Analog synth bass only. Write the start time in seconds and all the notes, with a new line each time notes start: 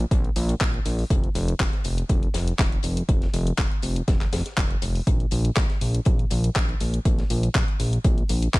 0.11 A#1
0.36 A#1
0.61 A#1
0.86 A#1
1.10 F1
1.35 F1
1.60 F1
1.85 F1
2.10 F1
2.34 F1
2.59 F1
2.84 F1
3.09 F1
3.33 F1
3.58 F1
3.83 F1
4.08 F1
4.33 F1
4.57 F1
4.82 F1
5.07 A#1
5.32 A#1
5.57 A#1
5.81 A#1
6.06 A#1
6.31 A#1
6.56 A#1
6.81 A#1
7.05 A#1
7.30 A#1
7.55 A#1
7.80 A#1
8.05 A#1
8.29 A#1
8.54 A#1